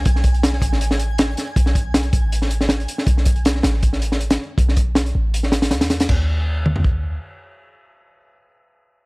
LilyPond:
<<
  \new Staff \with { instrumentName = "Synth texture" } { \time 4/4 \key ces \lydian \tempo 4 = 159 aes''1~ | aes''1 | r1 | r1 |
r1 | r1 | }
  \new Staff \with { instrumentName = "808-style bass" } { \clef bass \time 4/4 \key ces \lydian b,,4. a,,2 r8 | b,,4. a,,2 r8 | b,,4. a,,2 r8 | b,,4. a,,4. d,16 fes,8. |
ees,2. r4 | r1 | }
  \new DrumStaff \with { instrumentName = "Drums" } \drummode { \time 4/4 <hh bd>16 sn16 <hh bd>16 hh16 <hh sn>16 sn16 <hh bd>16 sn16 hh16 sn16 hh8 <hh sn>8 <hh sn>8 | <hh bd>16 sn16 <hh bd>8 <hh sn>16 hh16 <hh bd>8 hh16 sn16 hh16 sn16 <hh sn>16 hh16 hh16 sn16 | <hh bd>16 sn16 <hh bd>16 hh16 <hh sn>16 sn16 <hh sn>16 sn16 <hh bd>16 sn16 hh16 sn16 hh16 <hh sn>8. | <hh bd>16 sn16 <hh bd>8 <hh sn>16 hh8. hh16 sn16 <hh sn>16 <hh sn>16 <hh sn>16 <hh sn>16 <hh sn>16 <hh sn>16 |
<cymc bd>4 r8 toml16 tomfh16 bd4 r4 | r4 r4 r4 r4 | }
>>